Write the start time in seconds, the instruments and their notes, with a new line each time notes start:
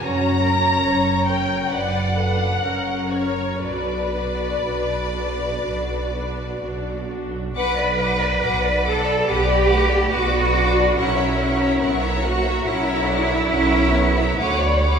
0.01 double bass section F#1, cello section F#2, viola section C#4 C#5, violin section F#4 A#5
0.43 viola section C#4 C#5, violin section A#4
0.84 double bass section F#1, cello section F#2, viola section C#4 C#5, violin section C#5
1.27 viola section C#4 C#5, violin section A#4 G5
1.71 double bass section F#1, cello section F#2, viola section D4 B4, violin section D5 F#5
2.14 viola section D4 B4, violin section A4
2.61 double bass section F#1, cello section F#2, viola section C#4 A#4, violin section A#4
3.10 viola section C#4 A#4, violin section C#5
3.60 double bass section B1, cello section B2, viola section D4 F#4, violin section B4 D5
4.12 viola section D4 F#4
4.63 double bass section B1, cello section B2, viola section D4 F#4
5.14 viola section D4 F#4
5.63 double bass section B1, cello section B2, viola section D4 F#4
6.12 viola section D4 F#4
6.59 double bass section B1, cello section B2, viola section D4 F#4
7.07 viola section D4 F#4
7.54 double bass section B1, cello section B4, violin section B4 F#5 D6
7.76 violin section D5 B5
7.99 violin section B4 F#5 D6
8.19 violin section D5 B5
8.40 double bass section B1, violin section B4 F#5 D6
8.62 violin section D5 B5
8.84 cello section A4, violin section B4 F#5 D6
9.04 violin section D5 B5
9.26 double bass section B1, viola section B3, cello section G4, violin section B4 F#5 D6
9.46 violin section D5 B5
9.67 viola section A3, violin section B4 F#5 D6
9.88 violin section D5 B5
10.09 double bass section B1, viola section B3, violin section B4 F#5 D6
10.14 cello section F#4
10.29 violin section D5
10.34 violin section B5
10.54 viola section D4, violin section B4 F#5 D6
10.74 violin section D5 B5
10.96 double bass section B1, viola section C#4, cello section E4, violin section A#4 F#5 C#6
11.16 violin section C#5 E5 A#5
11.37 violin section A#4 F#5 C#6
11.59 violin section C#5 E5 A#5
11.79 double bass section B1, viola section B3, violin section A#4 F#5 C#6
12.02 violin section C#5 E5 A#5
12.23 viola section A#3, cello section F#4, violin section A#4 F#5 C#6
12.43 violin section C#5 E5 A#5
12.64 double bass section B1, viola section C#4, cello section E4, violin section A#4 F#5 C#6
12.87 violin section C#5 E5 A#5
13.06 viola section D4, violin section A#4 F#5 C#6
13.27 violin section C#5 E5 A#5
13.48 double bass section B1, viola section C#4, violin section A#4 F#5 C#6
13.70 violin section C#5 E5 A#5
13.92 viola section B3, violin section A#4 F#5 C#6
14.17 violin section C#5 E5 A#5
14.38 double bass section D2, viola section A3, violin section B4 F#5 D6, cello section C#5
14.60 violin section D5 B5
14.81 viola section G3, violin section B4 F#5 D6